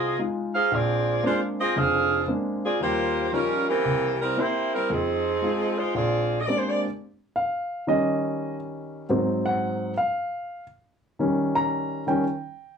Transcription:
Already playing: C2 C4 F4 G#4 D#5
0.19 G#3 D#4 F4
0.54 D#4 G#4 C5 F5
0.71 A#1 C4 F4 G#4 D5
1.23 G#3 A#3 C4 D4 F4 C5
1.60 C4 F4 G#4 D#5
1.76 F1 F2 D4 G#4 C5 F5
2.28 G#3 A#3 C4 D4
2.64 C4 F4 G#4 D5
2.80 D#2 G3 A#3 F4 G4 C5
3.33 F3 G3 C#4 D#4 F4 A#4
3.68 E3 A#3 C4 G4
3.85 C2
4.21 G3 C4 E4 A#4
4.37 A#3 C4 E4 G4 C5
4.74 G3 C4 E4 A#4
4.90 F2 F3 C4 D#4 G#4
5.42 G#3 D#4 F4
5.78 G#3 D#4 F4 C5
5.94 A#1 C4 F4 G#4 D5
6.41 D#5
6.46 G#3 A#3 C4 D4 G4 D5
6.58 C5
6.70 D5
7.36 F5
7.87 D#3 G3 C#4 D#5
9.09 G#2 F#3 C4
9.46 F#5
9.98 F5
11.19 D#3 G3 C#4
11.55 A#5
12.07 D#3 G3 C#4 G5

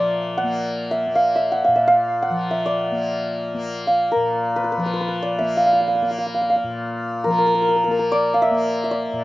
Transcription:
Already playing: A#2 F3 A#3 D5 E5
0.38 F#5
0.44 A#3
0.91 E5
1.07 A#3
1.15 F5
1.36 E5
1.52 F#5
1.64 A#2 F5
1.76 E5
1.88 F5
2.22 F#5
2.30 F3
2.51 E5
2.66 D5
2.92 A#3
3.54 A#3
3.87 F5
4.12 A#4
4.16 A#2
4.56 B4
4.64 B4
4.72 B4
4.77 F3 B4
4.86 B4
4.94 B4
5.01 B4
5.08 B4
5.22 D5
5.39 A#3 E5
5.57 F5
5.66 F5
5.73 F5
5.81 F5
5.88 F5
5.95 F5
6.02 A#3 F5
6.11 F5
6.18 F5
6.26 F5
6.34 F5
6.41 F5
6.50 F5
6.56 F5
6.64 A#2
7.24 F3 A#4
7.30 A#4
7.38 A#4
7.46 A#4
7.54 A#4
7.62 A#4
7.69 A#4
7.76 A#4
7.84 A#3 A#4
7.91 A#4
7.99 A#4
8.12 D5
8.34 F5
8.42 E5
8.51 A#3
8.84 E5
8.91 D5
9.13 A#2

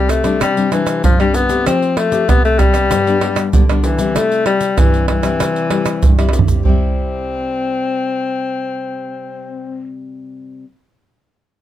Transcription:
Already playing: C3 G3 A3 C4 G4
0.09 A3, pandeiro, tamborim, shaker
0.24 G3 C4 D4, pandeiro, tamborim, shaker
0.41 C3 G3, pandeiro, tamborim, shaker, surdo
0.57 G3 C4 D4, pandeiro, shaker
0.71 E3 G3 C4 D4, pandeiro, tamborim, shaker
0.87 pandeiro, tamborim, shaker
1.03 G2 F3, pandeiro, shaker, surdo
1.19 G3 C4 D4, pandeiro, tamborim, shaker
1.34 B3, pandeiro, shaker
1.49 A3 C4 G4, pandeiro, shaker
1.66 F3 C4, pandeiro, tamborim, shaker, surdo
1.82 pandeiro, shaker
1.97 A3, pandeiro, tamborim
2.11 A3 C4 G4, pandeiro, shaker
2.28 C3 A3 B3 C4 G4, pandeiro, tamborim, shaker, surdo
2.45 A3, pandeiro, shaker
2.59 G3 A3 C4 G4, pandeiro, tamborim, shaker, surdo
2.73 G3 B3 D4, pandeiro, tamborim, shaker
2.91 G2, pandeiro, tamborim, shaker, surdo
3.07 G3 B3 D4, pandeiro, shaker
3.21 G3 B3 D4, pandeiro, tamborim
3.36 pandeiro, tamborim, shaker
3.53 D3 G3 B3 D4, pandeiro, shaker, surdo
3.69 G3 B3 D4, pandeiro, tamborim, shaker
3.84 E3, pandeiro, shaker
3.98 G3 C4 E4, pandeiro, shaker
4.16 C3 A3, pandeiro, tamborim, shaker, surdo
4.32 pandeiro, shaker
4.46 G3, pandeiro, tamborim
4.61 pandeiro, shaker
4.78 G2 E3 G3 C4 E4, pandeiro, tamborim, shaker, surdo
4.94 pandeiro, shaker
5.08 E3, pandeiro, tamborim
5.23 G3 C4 E4, pandeiro, tamborim, shaker
5.40 C3, pandeiro, tamborim, shaker, surdo
5.56 pandeiro, shaker
5.70 G3 C4 E4, pandeiro, tamborim
5.86 pandeiro, tamborim, shaker
6.03 G2, pandeiro, shaker, surdo
6.18 G3 C4 E4, pandeiro, tamborim, shaker
6.29 tamborim
6.33 pandeiro, shaker
6.39 surdo
6.48 pandeiro, shaker, surdo
6.63 C3 G3 C4, surdo
6.67 C4 E4

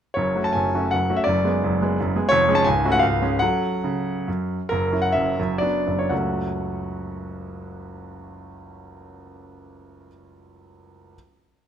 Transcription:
0.14 F#1 F#2 C#5
0.35 A3 C#4 F#4
0.44 A5
0.53 F#1 F#2 G#5
0.74 A3 C#4 F#4
0.91 F#1 F#2 F#5
1.10 A3 C#4 F#4
1.16 E5
1.24 F#1 F#2 D5
1.44 G#3 B3 G#4
1.63 F#1 F#2
1.82 G#3 B3 G#4
2.00 F#1 F#2
2.16 G#3 B3 G#4
2.29 F1 F2 C#5
2.48 G#3 C#4 G#4
2.55 A5
2.64 C#1 C#2 G#5
2.85 A3 C#4 F#4
2.92 F#5
2.99 C#1 C#2 F5
3.22 G#3 C#4 G#4
3.39 F#3 C#4 A4 F#5
3.84 C#3
4.28 F#2
4.69 F#1 F#2 A#4
4.92 F#3 C#4 E4
5.02 F#5
5.12 F#1 F#2 E5
5.39 F#1 F#2
5.58 F#3 B3 D4 D5
5.87 F#1 F#2
5.99 C#5
6.09 F#1 C#2 F#3 A3 C#4 F#4 F#5

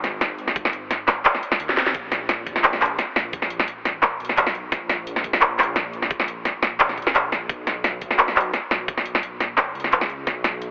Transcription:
Already playing: G#1
0.04 snare, closed hi-hat
0.21 snare, closed hi-hat
0.38 closed hi-hat
0.48 snare
0.56 G#1, kick, closed hi-hat
0.65 snare
0.73 closed hi-hat
0.91 snare, closed hi-hat
1.08 clap, snare, closed hi-hat
1.25 clap, closed hi-hat
1.35 snare
1.43 closed hi-hat
1.52 snare
1.60 D#2, closed hi-hat
1.69 snare
1.77 snare, closed hi-hat
1.86 snare
1.94 A#1, kick, closed hi-hat
2.12 snare, closed hi-hat
2.29 snare, closed hi-hat
2.47 kick, closed hi-hat
2.56 snare
2.64 clap, closed hi-hat
2.73 snare
2.81 clap, closed hi-hat
2.86 closed hi-hat
2.99 snare, closed hi-hat
3.16 A#1, snare, closed hi-hat
3.33 kick, closed hi-hat
3.42 snare
3.50 closed hi-hat
3.60 snare
3.68 closed hi-hat
3.85 A1, snare, closed hi-hat
4.03 clap, snare, closed hi-hat
4.20 B1, closed hi-hat
4.25 closed hi-hat
4.29 snare
4.37 clap, closed hi-hat
4.47 snare
4.55 closed hi-hat
4.72 A#1, kick, snare, closed hi-hat
4.89 snare, closed hi-hat
5.07 closed hi-hat
5.16 snare
5.24 kick, closed hi-hat
5.33 snare
5.41 clap, closed hi-hat
5.59 clap, snare, closed hi-hat
5.63 closed hi-hat
5.76 A#1, snare, closed hi-hat
5.93 closed hi-hat
6.02 snare
6.11 kick, closed hi-hat
6.20 snare
6.28 closed hi-hat
6.45 snare, closed hi-hat
6.63 snare, closed hi-hat
6.80 A#1, clap, closed hi-hat
6.89 snare
6.97 kick, closed hi-hat
7.02 closed hi-hat
7.07 snare
7.15 clap, closed hi-hat
7.32 snare, closed hi-hat
7.49 B1, kick, closed hi-hat
7.67 snare, closed hi-hat
7.84 snare, closed hi-hat
8.01 kick, closed hi-hat
8.11 snare
8.19 clap, closed hi-hat
8.28 snare
8.36 clap, closed hi-hat
8.41 closed hi-hat
8.53 snare, closed hi-hat
8.71 B1, snare, closed hi-hat
8.88 kick, closed hi-hat
8.97 snare
9.06 closed hi-hat
9.15 snare
9.23 closed hi-hat
9.40 A#1, snare, closed hi-hat
9.58 clap, snare, closed hi-hat
9.75 C#2, closed hi-hat
9.80 closed hi-hat
9.84 snare
9.92 clap, closed hi-hat
10.01 snare
10.10 closed hi-hat
10.27 B1, kick, snare, closed hi-hat
10.44 snare, closed hi-hat
10.62 closed hi-hat

